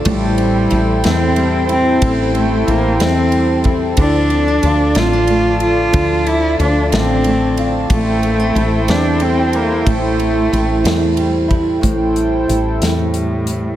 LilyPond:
<<
  \new Staff \with { instrumentName = "Analog synth pad" } { \time 6/8 \key a \phrygian \tempo 4. = 61 << { <e' c'' g''>2.~ | <e' c'' g''>2. | <f d'' a''>2.~ | <f d'' a''>2. |
<e' c'' g''>2.~ | <e' c'' g''>2. | <e' c'' g''>2. | } \\ { a'2.~ | a'2.~ | a'2.~ | a'2. |
a'2.~ | a'2. | a'2. | } >> }
  \new Staff \with { instrumentName = "Cello" } { \time 6/8 \key a \phrygian g4. c'4 c'8~ | c'8 a8 bes8 c'4 r8 | d'4. f'4 f'8~ | f'8 e'8 d'8 c'4 r8 |
a4. d'8 c'8 bes8 | a2 r4 | r4. a,4. | }
  \new Staff \with { instrumentName = "Nylon-string guitar" } { \time 6/8 \key a \phrygian a,8 c'8 e'8 c'8 g8 e'8~ | e'8 c'8 e'8 c'8 g8 e'8 | d8 c'16 d'16 f'8 c'16 d'16 a4 | d8 d'8 f'8 d'8 a8 f'8 |
r8 bes16 c'16 e'8 c'8 g8 e'8 | a,8 c'8 e'8 c'8 g8 e'8 | <a, e'>8 g8 e'8 c'8 g8 e'8 | }
  \new Staff \with { instrumentName = "Fretless electric bass" } { \clef bass \time 6/8 \key a \phrygian a,,4 a,,8 e,4. | a,,4 a,,8 e,4. | d,4 d,8 a,,4. | d,4 d,8 a,,4. |
a,,4 a,,8 e,4. | a,,4 a,,8 e,4. | a,,4 a,,8 e,4. | }
  \new DrumStaff \with { instrumentName = "Drums" } \drummode { \time 6/8 <bd cymr>8 cymr8 cymr8 <cymr sn>8 cymr8 cymr8 | <bd cymr>8 cymr8 cymr8 <cymr sn>8 cymr8 <bd cymr>8 | <bd cymr>8 cymr8 cymr8 <cymr sn>8 cymr8 cymr8 | <bd cymr>8 cymr8 cymr8 <cymr sn>8 cymr8 cymr8 |
<bd cymr>8 cymr8 cymr8 <cymr sn>8 cymr8 cymr8 | <bd cymr>8 cymr8 cymr8 <cymr sn>8 cymr8 <bd cymr>8 | <hh bd>8 hh8 hh8 <hh sn>8 hh8 hh8 | }
>>